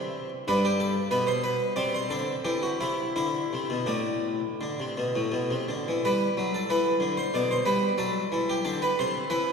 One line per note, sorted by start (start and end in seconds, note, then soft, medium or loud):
0.00 0.29 C3 soft
0.00 0.44 C4 soft
0.48 0.93 G2 soft
0.48 1.72 D4 soft
0.48 0.64 B4 medium
0.65 0.80 G4 medium
0.80 1.11 A4 medium
1.11 1.58 B2 soft
1.11 1.27 B4 medium
1.27 1.43 C5 medium
1.44 1.71 B4 medium
1.76 2.00 C3 soft
1.76 3.12 C4 soft
1.76 1.93 D5 medium
1.94 2.10 C5 soft
2.10 2.35 D3 soft
2.10 2.39 A4 medium
2.45 2.70 E3 soft
2.45 2.62 G4 soft
2.63 2.80 F#4 soft
2.81 3.06 C3 soft
2.81 3.11 E4 medium
3.16 3.42 D3 soft
3.16 3.90 E4 medium
3.53 3.70 C3 soft
3.70 3.88 B2 soft
3.86 4.39 A2 soft
3.86 5.41 D4 soft
4.61 4.78 D3 soft
4.80 4.97 C3 soft
4.97 5.15 B2 soft
5.16 5.33 A2 soft
5.32 5.50 B2 soft
5.51 5.68 C3 soft
5.69 5.86 D3 soft
5.88 6.04 E3 soft
6.05 6.29 G3 soft
6.05 6.54 B4 medium
6.37 6.61 F#3 soft
6.54 6.70 A4 medium
6.70 6.93 E3 soft
6.70 7.19 B4 medium
7.00 7.24 D3 soft
7.17 7.34 C5 medium
7.34 7.57 B2 soft
7.34 7.51 D5 medium
7.51 7.67 C5 medium
7.66 7.90 G3 soft
7.66 7.99 B4 medium
7.98 8.22 F#3 soft
7.98 8.41 A4 medium
8.32 8.56 E3 medium
8.49 8.66 G4 medium
8.65 8.89 D3 soft
8.65 8.82 A4 medium
8.82 8.99 B4 medium
8.99 9.23 C3 soft
8.99 9.27 C5 medium
9.30 9.53 E3 soft
9.30 9.53 B4 medium